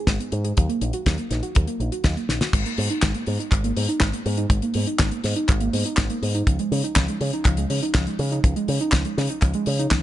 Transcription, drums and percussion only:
0.07 kick loud
0.07 snare loud
0.07 closed hi-hat loud
0.20 closed hi-hat medium
0.32 closed hi-hat medium
0.45 closed hi-hat medium
0.57 kick loud
0.57 closed hi-hat loud
0.70 closed hi-hat medium
0.81 closed hi-hat medium
0.93 closed hi-hat medium
1.06 kick loud
1.06 snare loud
1.06 closed hi-hat loud
1.18 closed hi-hat medium
1.31 snare soft
1.31 closed hi-hat medium
1.43 closed hi-hat soft
1.55 kick loud
1.55 closed hi-hat loud
1.67 closed hi-hat medium
1.80 closed hi-hat soft
1.92 closed hi-hat medium
2.04 kick loud
2.04 snare loud
2.04 closed hi-hat medium
2.17 closed hi-hat medium
2.29 snare medium
2.29 closed hi-hat medium
2.41 snare medium
2.41 closed hi-hat medium
2.53 kick loud
2.53 closed hi-hat loud
2.53 crash loud
2.66 closed hi-hat medium
2.78 open hi-hat loud
2.90 closed hi-hat medium
3.02 kick loud
3.02 snare loud
3.02 clap medium
3.02 closed hi-hat loud
3.14 closed hi-hat medium
3.26 open hi-hat loud
3.40 closed hi-hat medium
3.52 kick loud
3.52 clap soft
3.52 closed hi-hat loud
3.64 closed hi-hat medium
3.77 open hi-hat loud
3.89 closed hi-hat medium
4.00 kick loud
4.00 snare loud
4.00 clap medium
4.00 closed hi-hat loud
4.13 closed hi-hat medium
4.26 open hi-hat medium
4.37 closed hi-hat medium
4.50 kick loud
4.50 closed hi-hat medium
4.62 closed hi-hat medium
4.74 open hi-hat loud
4.87 closed hi-hat medium
4.99 kick loud
4.99 snare loud
4.99 clap loud
4.99 closed hi-hat loud
5.11 closed hi-hat medium
5.24 snare soft
5.24 open hi-hat loud
5.36 closed hi-hat medium
5.48 kick loud
5.48 clap medium
5.48 closed hi-hat loud
5.60 closed hi-hat medium
5.73 open hi-hat loud
5.86 closed hi-hat medium
5.97 kick loud
5.97 snare loud
5.97 clap medium
5.97 closed hi-hat medium
6.10 closed hi-hat medium
6.23 open hi-hat loud
6.35 closed hi-hat medium
6.47 kick loud
6.47 closed hi-hat loud
6.59 closed hi-hat medium
6.72 open hi-hat loud
6.85 closed hi-hat medium
6.96 kick loud
6.96 snare loud
6.96 clap loud
6.96 closed hi-hat loud
7.08 closed hi-hat medium
7.21 open hi-hat loud
7.33 closed hi-hat medium
7.45 kick loud
7.45 clap soft
7.45 closed hi-hat loud
7.57 closed hi-hat medium
7.70 open hi-hat loud
7.83 closed hi-hat medium
7.94 kick loud
7.94 snare loud
7.94 clap medium
7.94 closed hi-hat medium
8.07 closed hi-hat medium
8.19 open hi-hat loud
8.32 closed hi-hat medium
8.44 kick loud
8.44 closed hi-hat loud
8.56 closed hi-hat medium
8.68 open hi-hat loud
8.81 closed hi-hat medium
8.92 kick loud
8.92 snare loud
8.92 clap medium
8.92 closed hi-hat loud
9.05 closed hi-hat medium
9.17 snare soft
9.17 open hi-hat loud
9.29 closed hi-hat medium
9.42 kick loud
9.42 clap soft
9.42 closed hi-hat medium
9.54 closed hi-hat medium
9.66 open hi-hat loud
9.79 closed hi-hat medium
9.91 kick loud
9.91 snare loud
9.91 clap medium
9.91 closed hi-hat medium

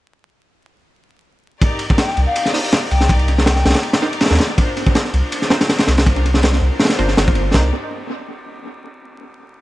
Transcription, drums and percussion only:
1.61 kick loud
1.61 ride medium
1.79 ride medium
1.90 kick loud
1.98 snare loud
1.98 ride medium
2.08 snare soft
2.17 ride medium
2.36 ride medium
2.46 snare soft
2.54 open hi-hat medium
2.64 ride soft
2.72 snare loud
2.72 ride medium
2.91 ride medium
3.01 snare soft
3.09 kick loud
3.09 ride medium
3.19 ride soft
3.28 ride medium
3.38 snare medium
3.46 snare loud
3.46 ride loud
3.56 snare soft
3.65 snare medium
3.65 ride medium
3.70 snare medium
3.70 ride medium
3.74 snare loud
3.74 ride medium
3.83 ride medium
3.93 snare loud
3.93 ride medium
4.02 snare soft
4.13 ride medium
4.21 snare medium
4.21 ride medium
4.25 snare medium
4.25 ride medium
4.30 snare medium
4.30 ride medium
4.35 snare medium
4.35 ride medium
4.39 snare loud
4.39 ride medium
4.58 kick loud
4.58 ride medium
4.77 ride medium
4.86 kick loud
4.95 snare loud
4.95 ride medium
5.05 snare soft
5.14 ride medium
5.32 ride medium
5.42 snare soft
5.50 snare loud
5.50 ride medium
5.61 snare loud
5.61 ride medium
5.69 snare loud
5.69 ride medium
5.78 snare loud
5.78 ride medium
5.87 snare medium
5.87 ride medium
5.98 snare loud
5.98 ride medium
6.06 kick loud
6.06 ride medium
6.16 ride medium
6.26 ride medium
6.34 snare medium
6.43 snare loud
6.43 ride medium
6.53 snare soft
6.79 snare medium
6.79 ride medium
6.85 snare medium
6.85 ride medium
6.89 snare loud
6.89 ride medium
6.99 ride medium
7.08 snare soft
7.17 snare loud
7.17 ride medium
7.28 kick loud
7.35 ride medium
7.54 kick loud
7.54 snare loud
7.54 china medium

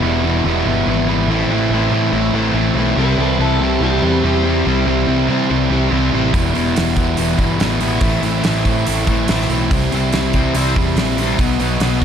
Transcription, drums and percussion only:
6.34 kick loud
6.34 open hi-hat medium
6.55 open hi-hat soft
6.76 snare loud
6.76 open hi-hat medium
6.96 kick medium
6.96 open hi-hat soft
7.17 open hi-hat medium
7.39 kick medium
7.39 open hi-hat soft
7.60 snare loud
7.60 open hi-hat medium
7.80 open hi-hat soft
8.01 kick loud
8.01 open hi-hat medium
8.23 open hi-hat soft
8.44 snare loud
8.44 open hi-hat medium
8.65 kick medium
8.65 open hi-hat soft
8.87 open hi-hat medium
9.07 kick medium
9.07 open hi-hat soft
9.28 snare medium
9.28 open hi-hat medium
9.41 snare soft
9.50 open hi-hat soft
9.71 kick loud
9.71 open hi-hat medium
9.92 open hi-hat soft
10.12 snare medium
10.12 open hi-hat medium
10.33 kick medium
10.33 open hi-hat soft
10.55 open hi-hat medium
10.76 kick medium
10.76 open hi-hat soft
10.97 snare medium
10.97 open hi-hat medium
11.18 open hi-hat soft
11.39 kick loud
11.39 open hi-hat medium
11.60 open hi-hat soft
11.80 snare loud
11.80 open hi-hat medium

